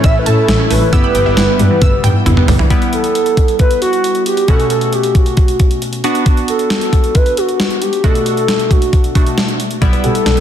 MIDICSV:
0, 0, Header, 1, 7, 480
1, 0, Start_track
1, 0, Tempo, 444444
1, 1003, Time_signature, 4, 2, 24, 8
1, 11233, End_track
2, 0, Start_track
2, 0, Title_t, "Soft synth lead"
2, 0, Program_c, 0, 80
2, 46, Note_on_c, 0, 76, 108
2, 199, Note_off_c, 0, 76, 0
2, 206, Note_on_c, 0, 71, 74
2, 284, Note_on_c, 0, 69, 97
2, 300, Note_off_c, 0, 71, 0
2, 764, Note_on_c, 0, 71, 107
2, 780, Note_off_c, 0, 69, 0
2, 2683, Note_off_c, 0, 71, 0
2, 3164, Note_on_c, 0, 69, 107
2, 3840, Note_off_c, 0, 69, 0
2, 3886, Note_on_c, 0, 71, 102
2, 4108, Note_off_c, 0, 71, 0
2, 4126, Note_on_c, 0, 66, 93
2, 4571, Note_off_c, 0, 66, 0
2, 4606, Note_on_c, 0, 67, 90
2, 4847, Note_on_c, 0, 69, 94
2, 4863, Note_off_c, 0, 67, 0
2, 5082, Note_off_c, 0, 69, 0
2, 5088, Note_on_c, 0, 69, 90
2, 5327, Note_on_c, 0, 67, 82
2, 5343, Note_off_c, 0, 69, 0
2, 5568, Note_on_c, 0, 66, 84
2, 5585, Note_off_c, 0, 67, 0
2, 6286, Note_off_c, 0, 66, 0
2, 7006, Note_on_c, 0, 69, 108
2, 7727, Note_on_c, 0, 71, 103
2, 7743, Note_off_c, 0, 69, 0
2, 7965, Note_on_c, 0, 66, 93
2, 7981, Note_off_c, 0, 71, 0
2, 8446, Note_on_c, 0, 67, 88
2, 8463, Note_off_c, 0, 66, 0
2, 8684, Note_on_c, 0, 69, 96
2, 8700, Note_off_c, 0, 67, 0
2, 8920, Note_off_c, 0, 69, 0
2, 8926, Note_on_c, 0, 69, 102
2, 9403, Note_on_c, 0, 66, 84
2, 9419, Note_off_c, 0, 69, 0
2, 10123, Note_off_c, 0, 66, 0
2, 10843, Note_on_c, 0, 69, 108
2, 11233, Note_off_c, 0, 69, 0
2, 11233, End_track
3, 0, Start_track
3, 0, Title_t, "Synth arpeggio sound"
3, 0, Program_c, 1, 84
3, 42, Note_on_c, 1, 88, 106
3, 110, Note_off_c, 1, 88, 0
3, 281, Note_on_c, 1, 81, 98
3, 350, Note_off_c, 1, 81, 0
3, 523, Note_on_c, 1, 64, 92
3, 591, Note_off_c, 1, 64, 0
3, 642, Note_on_c, 1, 61, 81
3, 710, Note_off_c, 1, 61, 0
3, 761, Note_on_c, 1, 57, 82
3, 830, Note_off_c, 1, 57, 0
3, 882, Note_on_c, 1, 52, 71
3, 950, Note_off_c, 1, 52, 0
3, 1001, Note_on_c, 1, 88, 112
3, 1069, Note_off_c, 1, 88, 0
3, 1122, Note_on_c, 1, 83, 89
3, 1190, Note_off_c, 1, 83, 0
3, 1241, Note_on_c, 1, 79, 91
3, 1309, Note_off_c, 1, 79, 0
3, 1361, Note_on_c, 1, 76, 83
3, 1429, Note_off_c, 1, 76, 0
3, 1482, Note_on_c, 1, 64, 92
3, 1550, Note_off_c, 1, 64, 0
3, 1722, Note_on_c, 1, 55, 82
3, 1790, Note_off_c, 1, 55, 0
3, 1842, Note_on_c, 1, 52, 70
3, 1910, Note_off_c, 1, 52, 0
3, 1962, Note_on_c, 1, 88, 110
3, 2030, Note_off_c, 1, 88, 0
3, 2201, Note_on_c, 1, 79, 96
3, 2270, Note_off_c, 1, 79, 0
3, 2441, Note_on_c, 1, 64, 93
3, 2509, Note_off_c, 1, 64, 0
3, 2561, Note_on_c, 1, 59, 76
3, 2629, Note_off_c, 1, 59, 0
3, 2682, Note_on_c, 1, 55, 79
3, 2750, Note_off_c, 1, 55, 0
3, 2802, Note_on_c, 1, 52, 72
3, 2870, Note_off_c, 1, 52, 0
3, 10603, Note_on_c, 1, 74, 108
3, 10671, Note_off_c, 1, 74, 0
3, 10723, Note_on_c, 1, 71, 85
3, 10791, Note_off_c, 1, 71, 0
3, 10844, Note_on_c, 1, 67, 85
3, 10912, Note_off_c, 1, 67, 0
3, 11083, Note_on_c, 1, 62, 88
3, 11151, Note_off_c, 1, 62, 0
3, 11233, End_track
4, 0, Start_track
4, 0, Title_t, "Synth keys"
4, 0, Program_c, 2, 88
4, 0, Note_on_c, 2, 61, 70
4, 0, Note_on_c, 2, 64, 62
4, 0, Note_on_c, 2, 69, 75
4, 965, Note_off_c, 2, 64, 0
4, 966, Note_off_c, 2, 61, 0
4, 966, Note_off_c, 2, 69, 0
4, 1002, Note_on_c, 2, 59, 70
4, 1003, Note_on_c, 2, 64, 62
4, 1003, Note_on_c, 2, 67, 76
4, 2884, Note_off_c, 2, 59, 0
4, 2885, Note_off_c, 2, 64, 0
4, 2885, Note_off_c, 2, 67, 0
4, 2920, Note_on_c, 2, 55, 79
4, 2921, Note_on_c, 2, 59, 73
4, 2922, Note_on_c, 2, 64, 68
4, 4803, Note_off_c, 2, 55, 0
4, 4804, Note_off_c, 2, 59, 0
4, 4804, Note_off_c, 2, 64, 0
4, 4844, Note_on_c, 2, 61, 55
4, 4844, Note_on_c, 2, 66, 69
4, 4845, Note_on_c, 2, 47, 64
4, 4845, Note_on_c, 2, 57, 54
4, 6490, Note_off_c, 2, 47, 0
4, 6490, Note_off_c, 2, 57, 0
4, 6490, Note_off_c, 2, 61, 0
4, 6490, Note_off_c, 2, 66, 0
4, 6524, Note_on_c, 2, 62, 67
4, 6525, Note_on_c, 2, 59, 75
4, 6525, Note_on_c, 2, 66, 82
4, 8641, Note_off_c, 2, 59, 0
4, 8641, Note_off_c, 2, 62, 0
4, 8641, Note_off_c, 2, 66, 0
4, 8683, Note_on_c, 2, 57, 57
4, 8684, Note_on_c, 2, 47, 63
4, 8684, Note_on_c, 2, 62, 57
4, 8684, Note_on_c, 2, 66, 71
4, 9859, Note_off_c, 2, 47, 0
4, 9859, Note_off_c, 2, 57, 0
4, 9859, Note_off_c, 2, 66, 0
4, 9860, Note_off_c, 2, 62, 0
4, 9883, Note_on_c, 2, 57, 45
4, 9883, Note_on_c, 2, 62, 45
4, 9884, Note_on_c, 2, 47, 47
4, 9884, Note_on_c, 2, 66, 52
4, 10600, Note_on_c, 2, 55, 76
4, 10600, Note_on_c, 2, 59, 69
4, 10601, Note_on_c, 2, 64, 84
4, 10603, Note_off_c, 2, 47, 0
4, 10603, Note_off_c, 2, 57, 0
4, 10603, Note_off_c, 2, 62, 0
4, 10604, Note_off_c, 2, 66, 0
4, 11233, Note_off_c, 2, 55, 0
4, 11233, Note_off_c, 2, 59, 0
4, 11233, Note_off_c, 2, 64, 0
4, 11233, End_track
5, 0, Start_track
5, 0, Title_t, "Analog synth pad"
5, 0, Program_c, 3, 89
5, 0, Note_on_c, 3, 57, 81
5, 0, Note_on_c, 3, 61, 74
5, 0, Note_on_c, 3, 64, 90
5, 985, Note_off_c, 3, 57, 0
5, 986, Note_off_c, 3, 61, 0
5, 1003, Note_on_c, 3, 55, 79
5, 1003, Note_on_c, 3, 59, 75
5, 2886, Note_off_c, 3, 64, 0
5, 2904, Note_off_c, 3, 55, 0
5, 2904, Note_off_c, 3, 59, 0
5, 11233, End_track
6, 0, Start_track
6, 0, Title_t, "Double bass"
6, 0, Program_c, 4, 43
6, 43, Note_on_c, 4, 33, 103
6, 130, Note_off_c, 4, 33, 0
6, 281, Note_on_c, 4, 45, 105
6, 368, Note_off_c, 4, 45, 0
6, 523, Note_on_c, 4, 33, 111
6, 610, Note_off_c, 4, 33, 0
6, 764, Note_on_c, 4, 33, 100
6, 850, Note_off_c, 4, 33, 0
6, 1001, Note_on_c, 4, 31, 110
6, 1088, Note_off_c, 4, 31, 0
6, 1244, Note_on_c, 4, 31, 94
6, 1331, Note_off_c, 4, 31, 0
6, 1364, Note_on_c, 4, 31, 91
6, 1451, Note_off_c, 4, 31, 0
6, 1482, Note_on_c, 4, 31, 103
6, 1568, Note_off_c, 4, 31, 0
6, 1722, Note_on_c, 4, 43, 102
6, 1809, Note_off_c, 4, 43, 0
6, 1964, Note_on_c, 4, 31, 99
6, 2050, Note_off_c, 4, 31, 0
6, 2203, Note_on_c, 4, 43, 101
6, 2289, Note_off_c, 4, 43, 0
6, 2442, Note_on_c, 4, 31, 94
6, 2528, Note_off_c, 4, 31, 0
6, 2681, Note_on_c, 4, 31, 99
6, 2767, Note_off_c, 4, 31, 0
6, 10602, Note_on_c, 4, 35, 102
6, 10688, Note_off_c, 4, 35, 0
6, 10843, Note_on_c, 4, 47, 98
6, 10929, Note_off_c, 4, 47, 0
6, 11081, Note_on_c, 4, 35, 93
6, 11168, Note_off_c, 4, 35, 0
6, 11233, End_track
7, 0, Start_track
7, 0, Title_t, "Drums"
7, 40, Note_on_c, 9, 42, 71
7, 44, Note_on_c, 9, 36, 105
7, 148, Note_off_c, 9, 42, 0
7, 152, Note_off_c, 9, 36, 0
7, 284, Note_on_c, 9, 42, 82
7, 392, Note_off_c, 9, 42, 0
7, 524, Note_on_c, 9, 38, 114
7, 524, Note_on_c, 9, 42, 81
7, 632, Note_off_c, 9, 38, 0
7, 632, Note_off_c, 9, 42, 0
7, 762, Note_on_c, 9, 46, 80
7, 870, Note_off_c, 9, 46, 0
7, 1001, Note_on_c, 9, 42, 73
7, 1002, Note_on_c, 9, 36, 104
7, 1109, Note_off_c, 9, 42, 0
7, 1110, Note_off_c, 9, 36, 0
7, 1240, Note_on_c, 9, 42, 82
7, 1348, Note_off_c, 9, 42, 0
7, 1479, Note_on_c, 9, 38, 111
7, 1481, Note_on_c, 9, 42, 82
7, 1587, Note_off_c, 9, 38, 0
7, 1589, Note_off_c, 9, 42, 0
7, 1722, Note_on_c, 9, 42, 72
7, 1830, Note_off_c, 9, 42, 0
7, 1961, Note_on_c, 9, 42, 68
7, 1962, Note_on_c, 9, 48, 60
7, 1963, Note_on_c, 9, 36, 107
7, 2069, Note_off_c, 9, 42, 0
7, 2070, Note_off_c, 9, 48, 0
7, 2071, Note_off_c, 9, 36, 0
7, 2201, Note_on_c, 9, 47, 78
7, 2202, Note_on_c, 9, 42, 79
7, 2309, Note_off_c, 9, 47, 0
7, 2310, Note_off_c, 9, 42, 0
7, 2443, Note_on_c, 9, 45, 88
7, 2444, Note_on_c, 9, 42, 82
7, 2551, Note_off_c, 9, 45, 0
7, 2552, Note_off_c, 9, 42, 0
7, 2561, Note_on_c, 9, 45, 83
7, 2669, Note_off_c, 9, 45, 0
7, 2680, Note_on_c, 9, 46, 79
7, 2681, Note_on_c, 9, 43, 102
7, 2788, Note_off_c, 9, 46, 0
7, 2789, Note_off_c, 9, 43, 0
7, 2800, Note_on_c, 9, 43, 99
7, 2908, Note_off_c, 9, 43, 0
7, 2921, Note_on_c, 9, 36, 93
7, 2921, Note_on_c, 9, 42, 66
7, 3029, Note_off_c, 9, 36, 0
7, 3029, Note_off_c, 9, 42, 0
7, 3044, Note_on_c, 9, 42, 48
7, 3152, Note_off_c, 9, 42, 0
7, 3161, Note_on_c, 9, 42, 75
7, 3269, Note_off_c, 9, 42, 0
7, 3281, Note_on_c, 9, 42, 48
7, 3389, Note_off_c, 9, 42, 0
7, 3404, Note_on_c, 9, 42, 75
7, 3512, Note_off_c, 9, 42, 0
7, 3521, Note_on_c, 9, 42, 52
7, 3629, Note_off_c, 9, 42, 0
7, 3642, Note_on_c, 9, 36, 83
7, 3643, Note_on_c, 9, 42, 65
7, 3750, Note_off_c, 9, 36, 0
7, 3751, Note_off_c, 9, 42, 0
7, 3761, Note_on_c, 9, 42, 50
7, 3869, Note_off_c, 9, 42, 0
7, 3879, Note_on_c, 9, 42, 63
7, 3883, Note_on_c, 9, 36, 93
7, 3987, Note_off_c, 9, 42, 0
7, 3991, Note_off_c, 9, 36, 0
7, 4002, Note_on_c, 9, 42, 51
7, 4110, Note_off_c, 9, 42, 0
7, 4123, Note_on_c, 9, 42, 72
7, 4231, Note_off_c, 9, 42, 0
7, 4244, Note_on_c, 9, 42, 45
7, 4352, Note_off_c, 9, 42, 0
7, 4365, Note_on_c, 9, 42, 72
7, 4473, Note_off_c, 9, 42, 0
7, 4480, Note_on_c, 9, 42, 45
7, 4588, Note_off_c, 9, 42, 0
7, 4602, Note_on_c, 9, 42, 73
7, 4710, Note_off_c, 9, 42, 0
7, 4722, Note_on_c, 9, 42, 50
7, 4830, Note_off_c, 9, 42, 0
7, 4840, Note_on_c, 9, 42, 68
7, 4842, Note_on_c, 9, 36, 95
7, 4948, Note_off_c, 9, 42, 0
7, 4950, Note_off_c, 9, 36, 0
7, 4963, Note_on_c, 9, 42, 45
7, 5071, Note_off_c, 9, 42, 0
7, 5077, Note_on_c, 9, 42, 76
7, 5185, Note_off_c, 9, 42, 0
7, 5198, Note_on_c, 9, 42, 49
7, 5306, Note_off_c, 9, 42, 0
7, 5320, Note_on_c, 9, 42, 75
7, 5428, Note_off_c, 9, 42, 0
7, 5438, Note_on_c, 9, 42, 55
7, 5546, Note_off_c, 9, 42, 0
7, 5561, Note_on_c, 9, 42, 67
7, 5562, Note_on_c, 9, 36, 84
7, 5669, Note_off_c, 9, 42, 0
7, 5670, Note_off_c, 9, 36, 0
7, 5681, Note_on_c, 9, 42, 51
7, 5789, Note_off_c, 9, 42, 0
7, 5799, Note_on_c, 9, 42, 62
7, 5803, Note_on_c, 9, 36, 94
7, 5907, Note_off_c, 9, 42, 0
7, 5911, Note_off_c, 9, 36, 0
7, 5921, Note_on_c, 9, 42, 51
7, 6029, Note_off_c, 9, 42, 0
7, 6043, Note_on_c, 9, 42, 70
7, 6046, Note_on_c, 9, 36, 92
7, 6151, Note_off_c, 9, 42, 0
7, 6154, Note_off_c, 9, 36, 0
7, 6164, Note_on_c, 9, 42, 45
7, 6272, Note_off_c, 9, 42, 0
7, 6284, Note_on_c, 9, 42, 73
7, 6392, Note_off_c, 9, 42, 0
7, 6400, Note_on_c, 9, 42, 44
7, 6508, Note_off_c, 9, 42, 0
7, 6522, Note_on_c, 9, 42, 73
7, 6630, Note_off_c, 9, 42, 0
7, 6642, Note_on_c, 9, 42, 53
7, 6750, Note_off_c, 9, 42, 0
7, 6760, Note_on_c, 9, 42, 68
7, 6762, Note_on_c, 9, 36, 94
7, 6868, Note_off_c, 9, 42, 0
7, 6870, Note_off_c, 9, 36, 0
7, 6883, Note_on_c, 9, 42, 48
7, 6991, Note_off_c, 9, 42, 0
7, 6999, Note_on_c, 9, 42, 75
7, 7107, Note_off_c, 9, 42, 0
7, 7119, Note_on_c, 9, 42, 49
7, 7227, Note_off_c, 9, 42, 0
7, 7239, Note_on_c, 9, 38, 102
7, 7241, Note_on_c, 9, 42, 76
7, 7347, Note_off_c, 9, 38, 0
7, 7349, Note_off_c, 9, 42, 0
7, 7359, Note_on_c, 9, 42, 52
7, 7467, Note_off_c, 9, 42, 0
7, 7482, Note_on_c, 9, 36, 83
7, 7482, Note_on_c, 9, 42, 66
7, 7590, Note_off_c, 9, 36, 0
7, 7590, Note_off_c, 9, 42, 0
7, 7600, Note_on_c, 9, 42, 51
7, 7708, Note_off_c, 9, 42, 0
7, 7720, Note_on_c, 9, 42, 61
7, 7723, Note_on_c, 9, 36, 94
7, 7828, Note_off_c, 9, 42, 0
7, 7831, Note_off_c, 9, 36, 0
7, 7840, Note_on_c, 9, 42, 53
7, 7948, Note_off_c, 9, 42, 0
7, 7963, Note_on_c, 9, 42, 73
7, 8071, Note_off_c, 9, 42, 0
7, 8084, Note_on_c, 9, 42, 47
7, 8192, Note_off_c, 9, 42, 0
7, 8204, Note_on_c, 9, 38, 105
7, 8204, Note_on_c, 9, 42, 71
7, 8312, Note_off_c, 9, 38, 0
7, 8312, Note_off_c, 9, 42, 0
7, 8321, Note_on_c, 9, 42, 46
7, 8429, Note_off_c, 9, 42, 0
7, 8441, Note_on_c, 9, 42, 75
7, 8549, Note_off_c, 9, 42, 0
7, 8562, Note_on_c, 9, 42, 52
7, 8670, Note_off_c, 9, 42, 0
7, 8682, Note_on_c, 9, 36, 94
7, 8683, Note_on_c, 9, 42, 67
7, 8790, Note_off_c, 9, 36, 0
7, 8791, Note_off_c, 9, 42, 0
7, 8806, Note_on_c, 9, 42, 48
7, 8914, Note_off_c, 9, 42, 0
7, 8921, Note_on_c, 9, 42, 77
7, 9029, Note_off_c, 9, 42, 0
7, 9043, Note_on_c, 9, 42, 49
7, 9151, Note_off_c, 9, 42, 0
7, 9163, Note_on_c, 9, 38, 100
7, 9165, Note_on_c, 9, 42, 78
7, 9271, Note_off_c, 9, 38, 0
7, 9273, Note_off_c, 9, 42, 0
7, 9282, Note_on_c, 9, 42, 53
7, 9390, Note_off_c, 9, 42, 0
7, 9403, Note_on_c, 9, 36, 85
7, 9406, Note_on_c, 9, 42, 66
7, 9511, Note_off_c, 9, 36, 0
7, 9514, Note_off_c, 9, 42, 0
7, 9525, Note_on_c, 9, 42, 51
7, 9633, Note_off_c, 9, 42, 0
7, 9644, Note_on_c, 9, 42, 62
7, 9645, Note_on_c, 9, 36, 97
7, 9752, Note_off_c, 9, 42, 0
7, 9753, Note_off_c, 9, 36, 0
7, 9764, Note_on_c, 9, 42, 51
7, 9872, Note_off_c, 9, 42, 0
7, 9885, Note_on_c, 9, 42, 75
7, 9886, Note_on_c, 9, 36, 91
7, 9993, Note_off_c, 9, 42, 0
7, 9994, Note_off_c, 9, 36, 0
7, 10006, Note_on_c, 9, 42, 46
7, 10114, Note_off_c, 9, 42, 0
7, 10126, Note_on_c, 9, 38, 101
7, 10126, Note_on_c, 9, 42, 70
7, 10234, Note_off_c, 9, 38, 0
7, 10234, Note_off_c, 9, 42, 0
7, 10244, Note_on_c, 9, 42, 45
7, 10352, Note_off_c, 9, 42, 0
7, 10365, Note_on_c, 9, 42, 73
7, 10473, Note_off_c, 9, 42, 0
7, 10482, Note_on_c, 9, 42, 53
7, 10590, Note_off_c, 9, 42, 0
7, 10602, Note_on_c, 9, 36, 98
7, 10604, Note_on_c, 9, 42, 68
7, 10710, Note_off_c, 9, 36, 0
7, 10712, Note_off_c, 9, 42, 0
7, 10725, Note_on_c, 9, 42, 48
7, 10833, Note_off_c, 9, 42, 0
7, 10841, Note_on_c, 9, 42, 75
7, 10949, Note_off_c, 9, 42, 0
7, 10962, Note_on_c, 9, 42, 49
7, 11070, Note_off_c, 9, 42, 0
7, 11082, Note_on_c, 9, 38, 99
7, 11084, Note_on_c, 9, 42, 75
7, 11190, Note_off_c, 9, 38, 0
7, 11192, Note_off_c, 9, 42, 0
7, 11233, End_track
0, 0, End_of_file